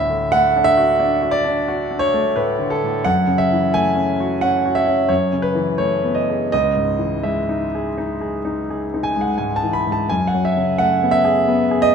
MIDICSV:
0, 0, Header, 1, 2, 480
1, 0, Start_track
1, 0, Tempo, 682594
1, 2146, Time_signature, 5, 2, 24, 8
1, 3586, Tempo, 720288
1, 5986, Tempo, 700935
1, 8210, End_track
2, 0, Start_track
2, 0, Title_t, "Grand piano"
2, 0, Program_c, 0, 0
2, 0, Control_c, 0, 64, 127
2, 0, Note_on_c, 0, 38, 62
2, 0, Note_on_c, 0, 45, 50
2, 0, Note_on_c, 0, 76, 87
2, 69, Note_on_c, 0, 50, 47
2, 159, Note_off_c, 0, 45, 0
2, 219, Note_off_c, 0, 76, 0
2, 224, Note_on_c, 0, 78, 110
2, 236, Note_on_c, 0, 57, 51
2, 320, Note_off_c, 0, 50, 0
2, 396, Note_on_c, 0, 62, 51
2, 453, Note_on_c, 0, 76, 107
2, 461, Note_off_c, 0, 78, 0
2, 483, Note_off_c, 0, 57, 0
2, 544, Note_on_c, 0, 66, 59
2, 641, Note_off_c, 0, 62, 0
2, 700, Note_on_c, 0, 62, 61
2, 793, Note_off_c, 0, 66, 0
2, 859, Note_on_c, 0, 66, 52
2, 924, Note_on_c, 0, 74, 97
2, 929, Note_off_c, 0, 76, 0
2, 951, Note_off_c, 0, 62, 0
2, 1014, Note_on_c, 0, 62, 56
2, 1111, Note_off_c, 0, 66, 0
2, 1183, Note_on_c, 0, 66, 56
2, 1271, Note_off_c, 0, 62, 0
2, 1342, Note_on_c, 0, 62, 45
2, 1402, Note_on_c, 0, 73, 100
2, 1412, Note_off_c, 0, 74, 0
2, 1437, Note_off_c, 0, 66, 0
2, 1502, Note_on_c, 0, 57, 60
2, 1599, Note_off_c, 0, 62, 0
2, 1653, Note_off_c, 0, 73, 0
2, 1658, Note_on_c, 0, 71, 75
2, 1663, Note_on_c, 0, 45, 46
2, 1760, Note_off_c, 0, 57, 0
2, 1820, Note_on_c, 0, 50, 51
2, 1901, Note_on_c, 0, 69, 83
2, 1903, Note_off_c, 0, 71, 0
2, 1921, Note_off_c, 0, 45, 0
2, 1997, Note_on_c, 0, 45, 44
2, 2081, Note_off_c, 0, 50, 0
2, 2117, Note_off_c, 0, 38, 0
2, 2141, Note_on_c, 0, 78, 99
2, 2145, Note_off_c, 0, 69, 0
2, 2148, Note_on_c, 0, 42, 63
2, 2153, Note_off_c, 0, 45, 0
2, 2158, Control_c, 0, 64, 0
2, 2273, Control_c, 0, 64, 127
2, 2302, Note_on_c, 0, 49, 48
2, 2378, Note_on_c, 0, 76, 86
2, 2385, Note_off_c, 0, 78, 0
2, 2478, Note_on_c, 0, 52, 42
2, 2561, Note_off_c, 0, 49, 0
2, 2623, Note_off_c, 0, 76, 0
2, 2629, Note_on_c, 0, 80, 101
2, 2633, Note_on_c, 0, 57, 54
2, 2729, Note_off_c, 0, 52, 0
2, 2778, Note_on_c, 0, 61, 49
2, 2886, Note_off_c, 0, 57, 0
2, 2956, Note_on_c, 0, 66, 51
2, 3040, Note_off_c, 0, 61, 0
2, 3104, Note_on_c, 0, 78, 92
2, 3109, Note_off_c, 0, 80, 0
2, 3113, Note_on_c, 0, 61, 45
2, 3209, Note_off_c, 0, 66, 0
2, 3274, Note_on_c, 0, 66, 51
2, 3341, Note_on_c, 0, 76, 85
2, 3347, Note_off_c, 0, 78, 0
2, 3367, Note_off_c, 0, 61, 0
2, 3421, Note_on_c, 0, 61, 47
2, 3527, Note_off_c, 0, 66, 0
2, 3561, Note_off_c, 0, 42, 0
2, 3576, Note_on_c, 0, 73, 75
2, 3582, Note_on_c, 0, 42, 57
2, 3584, Note_off_c, 0, 61, 0
2, 3584, Note_off_c, 0, 76, 0
2, 3597, Control_c, 0, 64, 0
2, 3714, Control_c, 0, 64, 127
2, 3739, Note_on_c, 0, 49, 41
2, 3802, Note_on_c, 0, 71, 85
2, 3812, Note_off_c, 0, 73, 0
2, 3887, Note_on_c, 0, 52, 47
2, 3990, Note_off_c, 0, 49, 0
2, 4040, Note_on_c, 0, 73, 84
2, 4046, Note_off_c, 0, 71, 0
2, 4049, Note_on_c, 0, 57, 42
2, 4146, Note_off_c, 0, 52, 0
2, 4212, Note_on_c, 0, 59, 43
2, 4284, Note_on_c, 0, 75, 69
2, 4289, Note_off_c, 0, 73, 0
2, 4310, Note_off_c, 0, 57, 0
2, 4382, Note_on_c, 0, 68, 41
2, 4473, Note_off_c, 0, 59, 0
2, 4510, Note_off_c, 0, 42, 0
2, 4525, Note_off_c, 0, 75, 0
2, 4535, Note_on_c, 0, 75, 99
2, 4541, Note_off_c, 0, 68, 0
2, 4542, Note_on_c, 0, 37, 57
2, 4552, Control_c, 0, 64, 0
2, 4641, Control_c, 0, 64, 127
2, 4693, Note_on_c, 0, 44, 43
2, 4843, Note_on_c, 0, 52, 36
2, 4956, Note_off_c, 0, 44, 0
2, 5009, Note_on_c, 0, 76, 65
2, 5017, Note_on_c, 0, 56, 46
2, 5023, Note_off_c, 0, 75, 0
2, 5114, Note_off_c, 0, 52, 0
2, 5180, Note_on_c, 0, 63, 43
2, 5283, Note_off_c, 0, 56, 0
2, 5351, Note_on_c, 0, 68, 49
2, 5443, Note_off_c, 0, 63, 0
2, 5503, Note_off_c, 0, 76, 0
2, 5504, Note_on_c, 0, 63, 50
2, 5607, Note_off_c, 0, 68, 0
2, 5659, Note_on_c, 0, 68, 48
2, 5761, Note_off_c, 0, 63, 0
2, 5818, Note_on_c, 0, 63, 45
2, 5919, Note_off_c, 0, 68, 0
2, 5988, Note_on_c, 0, 68, 47
2, 6079, Note_off_c, 0, 63, 0
2, 6149, Note_on_c, 0, 63, 47
2, 6214, Note_on_c, 0, 80, 85
2, 6245, Note_off_c, 0, 68, 0
2, 6302, Note_on_c, 0, 56, 51
2, 6335, Note_on_c, 0, 78, 65
2, 6340, Note_off_c, 0, 80, 0
2, 6403, Note_off_c, 0, 63, 0
2, 6449, Note_on_c, 0, 80, 69
2, 6458, Note_on_c, 0, 44, 42
2, 6459, Note_off_c, 0, 78, 0
2, 6556, Note_off_c, 0, 56, 0
2, 6575, Note_off_c, 0, 80, 0
2, 6575, Note_on_c, 0, 81, 75
2, 6623, Note_on_c, 0, 52, 39
2, 6693, Note_on_c, 0, 83, 75
2, 6698, Note_off_c, 0, 81, 0
2, 6714, Note_off_c, 0, 44, 0
2, 6786, Note_on_c, 0, 44, 36
2, 6817, Note_off_c, 0, 83, 0
2, 6822, Note_on_c, 0, 81, 74
2, 6878, Note_off_c, 0, 52, 0
2, 6917, Note_off_c, 0, 37, 0
2, 6941, Note_on_c, 0, 80, 91
2, 6942, Note_off_c, 0, 81, 0
2, 6944, Note_off_c, 0, 44, 0
2, 6950, Note_on_c, 0, 42, 56
2, 6956, Control_c, 0, 64, 0
2, 7047, Control_c, 0, 64, 127
2, 7063, Note_off_c, 0, 80, 0
2, 7063, Note_on_c, 0, 78, 75
2, 7107, Note_on_c, 0, 54, 42
2, 7183, Note_on_c, 0, 76, 77
2, 7185, Note_off_c, 0, 78, 0
2, 7265, Note_on_c, 0, 49, 41
2, 7365, Note_off_c, 0, 54, 0
2, 7413, Note_on_c, 0, 78, 92
2, 7418, Note_on_c, 0, 57, 51
2, 7428, Note_off_c, 0, 76, 0
2, 7526, Note_off_c, 0, 49, 0
2, 7580, Note_on_c, 0, 59, 49
2, 7638, Note_on_c, 0, 76, 98
2, 7664, Note_off_c, 0, 78, 0
2, 7683, Note_off_c, 0, 57, 0
2, 7729, Note_on_c, 0, 68, 61
2, 7843, Note_off_c, 0, 59, 0
2, 7889, Note_on_c, 0, 59, 56
2, 7995, Note_off_c, 0, 68, 0
2, 8047, Note_on_c, 0, 68, 58
2, 8122, Note_on_c, 0, 75, 110
2, 8132, Note_off_c, 0, 76, 0
2, 8153, Note_off_c, 0, 59, 0
2, 8210, Note_off_c, 0, 42, 0
2, 8210, Note_off_c, 0, 68, 0
2, 8210, Note_off_c, 0, 75, 0
2, 8210, End_track
0, 0, End_of_file